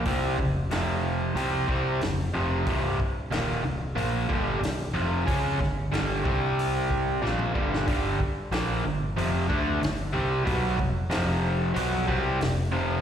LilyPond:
<<
  \new Staff \with { instrumentName = "Overdriven electric guitar" } { \clef bass \time 4/4 \key g \dorian \tempo 4 = 92 <c g c'>8 <fis, cis>8 <f, c f>4 <c g c'>8 <c g c'>8 <fis, cis>8 <f, c f>8 | <c, g, c>8 r8 <ees, bes, ees>8 <c, g,>8 <bes, f bes>8 <g, d g>8 <c, g,>8 <f, c f>8 | <des aes des'>8 <g, d>8 <g, d g>8 <c g c'>4. <bes, f bes>8 <g, d g>8 | <g, d g>8 r8 <bes, f bes>8 <g, d>8 <f, c f>8 <d a d'>8 <g, d>8 <c g c'>8 |
<b, fis b>8 <f, c>8 <f, c f>4 <b, fis b>8 <c g c'>8 <f, c>8 <f, c f>8 | }
  \new Staff \with { instrumentName = "Picked electric bass" } { \clef bass \time 4/4 \key g \dorian c,8 f,,8 f,,4 c,8 c,8 f,,8 f,,8 | c,,8 r8 ees,,8 c,,8 bes,,8 g,,8 c,,8 f,,8 | des,8 g,,8 g,,8 c,4. bes,,8 g,,8 | g,,8 r8 bes,,8 g,,8 f,,8 d,8 g,,8 c,8 |
b,,8 f,,8 f,,4 b,,8 c,8 f,,8 f,,8 | }
  \new DrumStaff \with { instrumentName = "Drums" } \drummode { \time 4/4 <hho bd>8 bd8 <hho sn>4 hho8 bd8 <hho sn>4 | <hho bd>8 bd8 <hho sn>4 hho8 bd8 <hho sn>4 | <hho bd>8 <bd sn>8 <hho sn>8 bd8 hho8 bd8 sn16 toml16 bd16 sn16 | <hho bd>8 bd8 <hho sn>4 hho8 bd8 <hho sn>4 |
<hho bd>8 bd8 <hho sn>4 hho8 bd8 <hho sn>4 | }
>>